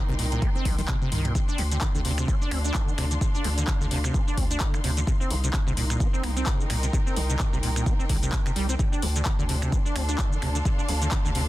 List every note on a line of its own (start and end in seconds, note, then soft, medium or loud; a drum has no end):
0.00 1.35 D#4 medium
0.00 1.35 A#4 medium
0.00 2.85 G5 medium
0.00 8.79 C6 medium
0.09 0.17 C2 medium
0.09 0.14 C3 loud
0.19 0.39 C2 medium
0.19 0.26 A#2 medium
0.19 open hi-hat medium
0.32 0.43 A#2 medium
0.32 closed hi-hat medium
0.42 0.49 C4 medium
0.42 kick loud
0.42 closed hi-hat medium
0.55 0.67 C4 medium
0.65 0.85 C2 medium
0.65 0.76 D3 medium
0.65 kick medium
0.65 open hi-hat loud
0.65 high tom medium
0.78 0.82 D#3 loud
0.78 open hi-hat medium
0.78 high tom medium
0.88 0.96 C3 medium
0.88 kick loud
0.88 clap loud
0.88 closed hi-hat medium
0.88 mid tom medium
1.02 1.10 C3 medium
1.02 mid tom medium
1.12 1.32 C2 medium
1.12 1.26 D#3 medium
1.12 mid tom medium
1.12 open hi-hat loud
1.25 1.33 A#2 loud
1.25 closed hi-hat medium
1.25 mid tom medium
1.35 1.39 D3 medium
1.35 5.07 D4 medium
1.35 kick loud
1.35 closed hi-hat medium
1.35 shaker medium
1.48 1.60 D4 medium
1.48 shaker soft
1.55 1.78 D2 loud
1.55 1.63 D3 loud
1.55 5.07 A4 medium
1.55 open hi-hat loud
1.71 1.77 D3 medium
1.71 closed hi-hat medium
1.71 shaker medium
1.81 1.86 D3 loud
1.81 kick loud
1.81 clap loud
1.81 closed hi-hat medium
1.81 shaker medium
1.88 6.50 F5 medium
1.95 2.03 D2 medium
1.95 2.00 D3 loud
1.95 shaker soft
2.05 2.25 D2 medium
2.05 2.12 C3 medium
2.05 open hi-hat loud
2.18 2.30 C3 medium
2.18 finger snap medium
2.18 closed hi-hat medium
2.18 shaker medium
2.28 2.35 D4 medium
2.28 kick loud
2.28 closed hi-hat medium
2.28 shaker medium
2.41 2.53 D4 medium
2.41 shaker soft
2.51 2.71 D2 medium
2.51 2.59 C4 medium
2.51 finger snap medium
2.51 open hi-hat loud
2.64 2.76 D4 loud
2.64 closed hi-hat medium
2.64 shaker medium
2.74 2.89 D3 medium
2.74 kick loud
2.74 clap loud
2.74 closed hi-hat medium
2.74 shaker medium
2.88 2.93 D#3 medium
2.88 shaker soft
2.98 3.18 D2 medium
2.98 3.05 C3 medium
2.98 finger snap medium
2.98 open hi-hat loud
3.11 3.15 D3 medium
3.11 closed hi-hat medium
3.11 shaker medium
3.21 3.26 D3 medium
3.21 kick loud
3.21 closed hi-hat medium
3.21 shaker medium
3.35 3.46 D4 medium
3.35 shaker soft
3.44 3.64 D2 loud
3.44 3.49 D3 loud
3.44 open hi-hat loud
3.58 3.63 D3 medium
3.58 closed hi-hat medium
3.58 shaker medium
3.67 3.72 D3 loud
3.67 kick loud
3.67 clap loud
3.67 closed hi-hat medium
3.67 shaker medium
3.81 3.89 D2 medium
3.81 3.86 D3 loud
3.81 shaker soft
3.91 4.11 D2 medium
3.91 3.98 C3 medium
3.91 open hi-hat loud
4.04 4.16 C3 medium
4.04 finger snap medium
4.04 closed hi-hat medium
4.04 shaker medium
4.14 4.21 D4 medium
4.14 kick loud
4.14 closed hi-hat soft
4.14 shaker medium
4.27 4.39 D4 medium
4.27 shaker soft
4.37 4.57 D2 medium
4.37 4.45 C4 medium
4.37 kick medium
4.37 open hi-hat loud
4.51 4.62 D4 loud
4.51 closed hi-hat medium
4.51 shaker medium
4.60 4.75 D3 medium
4.60 kick loud
4.60 clap loud
4.60 closed hi-hat soft
4.60 shaker medium
4.74 4.79 D#3 medium
4.74 finger snap medium
4.74 shaker soft
4.84 5.04 D2 medium
4.84 4.91 C3 medium
4.84 open hi-hat loud
4.97 5.00 D3 medium
4.97 closed hi-hat medium
4.97 shaker medium
5.07 5.12 C3 medium
5.07 8.79 D#4 medium
5.07 kick loud
5.07 closed hi-hat soft
5.07 shaker medium
5.20 5.32 C4 medium
5.20 shaker soft
5.30 5.50 C2 loud
5.30 5.35 C3 loud
5.30 open hi-hat loud
5.44 5.49 C3 medium
5.44 closed hi-hat medium
5.44 shaker medium
5.53 5.58 C3 loud
5.53 kick loud
5.53 clap loud
5.53 closed hi-hat soft
5.53 shaker medium
5.67 5.75 C2 medium
5.67 5.72 C3 loud
5.67 8.79 A#4 medium
5.67 shaker soft
5.77 5.97 C2 medium
5.77 5.84 A#2 medium
5.77 open hi-hat loud
5.90 6.02 A#2 medium
5.90 finger snap medium
5.90 closed hi-hat medium
5.90 shaker medium
6.00 6.07 C4 medium
6.00 kick loud
6.00 closed hi-hat soft
6.00 shaker medium
6.13 6.25 C4 medium
6.13 9.77 G5 medium
6.13 shaker soft
6.23 6.44 C2 medium
6.23 6.31 A#3 medium
6.23 finger snap medium
6.23 open hi-hat loud
6.37 6.48 C4 medium
6.37 closed hi-hat medium
6.37 shaker medium
6.46 6.61 C3 medium
6.46 kick loud
6.46 clap loud
6.46 closed hi-hat soft
6.46 shaker medium
6.60 6.65 D3 medium
6.60 shaker soft
6.70 6.90 C2 medium
6.70 6.77 A#2 medium
6.70 finger snap medium
6.70 open hi-hat loud
6.83 6.87 C3 medium
6.83 closed hi-hat medium
6.83 shaker medium
6.93 6.98 C3 medium
6.93 kick loud
6.93 closed hi-hat soft
6.93 shaker medium
7.06 7.18 C4 medium
7.06 shaker soft
7.16 7.36 C2 loud
7.16 7.21 C3 loud
7.16 open hi-hat loud
7.30 7.35 C3 medium
7.30 closed hi-hat medium
7.30 shaker medium
7.39 7.44 C3 loud
7.39 kick loud
7.39 clap loud
7.39 closed hi-hat soft
7.39 shaker medium
7.53 7.61 C2 medium
7.53 7.58 C3 loud
7.53 shaker soft
7.63 7.83 C2 medium
7.63 7.70 A#2 medium
7.63 open hi-hat loud
7.76 7.88 A#2 medium
7.76 finger snap medium
7.76 closed hi-hat medium
7.76 shaker medium
7.86 7.93 C4 medium
7.86 kick loud
7.86 closed hi-hat soft
7.86 shaker medium
7.99 8.05 C4 medium
7.99 shaker soft
8.09 8.29 C2 medium
8.09 8.17 D3 medium
8.09 kick medium
8.09 open hi-hat loud
8.22 8.31 C3 medium
8.22 closed hi-hat medium
8.22 shaker medium
8.32 kick loud
8.32 clap loud
8.32 closed hi-hat soft
8.32 shaker medium
8.46 8.51 C3 medium
8.46 finger snap medium
8.46 shaker soft
8.56 8.76 C2 medium
8.56 8.67 G3 loud
8.56 open hi-hat loud
8.69 8.75 C4 loud
8.69 closed hi-hat medium
8.69 shaker medium
8.79 8.84 D3 medium
8.79 11.48 D4 medium
8.79 kick loud
8.79 closed hi-hat soft
8.79 shaker medium
8.88 9.04 D4 medium
8.88 11.48 A4 medium
8.93 shaker soft
9.02 9.22 D2 loud
9.02 9.07 D3 loud
9.02 11.48 C6 medium
9.02 open hi-hat loud
9.16 9.21 D3 medium
9.16 closed hi-hat medium
9.16 shaker medium
9.25 9.30 D3 loud
9.25 kick loud
9.25 clap loud
9.25 closed hi-hat soft
9.25 shaker medium
9.39 9.47 D2 medium
9.39 9.45 D3 loud
9.39 shaker soft
9.49 9.69 D2 medium
9.49 9.56 C3 medium
9.49 open hi-hat loud
9.62 9.74 C3 medium
9.62 finger snap medium
9.62 closed hi-hat medium
9.62 shaker medium
9.72 9.80 D4 medium
9.72 kick loud
9.72 closed hi-hat soft
9.72 shaker medium
9.85 9.97 D4 medium
9.85 11.48 F5 medium
9.85 shaker soft
9.96 10.15 D2 medium
9.96 10.03 C4 medium
9.96 finger snap medium
9.96 open hi-hat loud
10.09 10.20 D4 loud
10.09 closed hi-hat medium
10.09 shaker medium
10.18 10.33 D3 medium
10.18 kick loud
10.18 clap loud
10.18 closed hi-hat soft
10.18 shaker medium
10.32 10.37 D#3 medium
10.32 shaker soft
10.42 10.62 D2 medium
10.42 10.49 C3 medium
10.42 finger snap medium
10.42 open hi-hat loud
10.55 10.59 D3 medium
10.55 closed hi-hat medium
10.55 shaker medium
10.65 10.70 D3 medium
10.65 kick loud
10.65 closed hi-hat soft
10.65 shaker medium
10.78 10.90 D4 medium
10.78 shaker soft
10.88 11.09 D2 loud
10.88 10.93 D3 loud
10.88 open hi-hat loud
11.02 11.07 D3 medium
11.02 closed hi-hat medium
11.02 shaker medium
11.11 11.16 D3 loud
11.11 kick loud
11.11 clap loud
11.11 closed hi-hat medium
11.11 shaker medium
11.25 11.33 D2 medium
11.25 11.31 D3 loud
11.25 shaker soft
11.35 11.48 D2 medium
11.35 11.42 C3 medium
11.35 open hi-hat loud